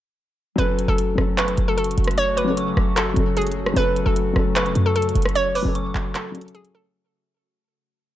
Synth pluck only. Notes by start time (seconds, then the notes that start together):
0.58 B4
0.88 A4
1.38 B4
1.68 A4
1.77 A4
2.18 C#5
2.37 B4
2.96 A4
3.37 G#4
3.77 B4
4.06 A4
4.56 B4
4.86 A4
4.96 A4
5.35 C#5
5.55 B4
6.15 A4
6.55 G#4
6.75 A4